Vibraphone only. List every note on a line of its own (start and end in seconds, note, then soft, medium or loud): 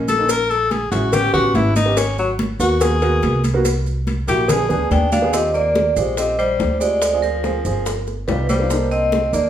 4.92 5.11 G5 loud
5.12 5.32 F5 loud
5.34 5.53 D#5 medium
5.54 5.98 D5 medium
5.97 6.18 C5 medium
6.18 6.40 D#5 medium
6.39 6.82 C5 loud
6.80 7.24 D5 medium
7.22 8.03 A#4 medium
8.28 8.50 B4 medium
8.49 8.89 C5 medium
8.91 9.31 D#5 medium
9.34 9.49 D5 medium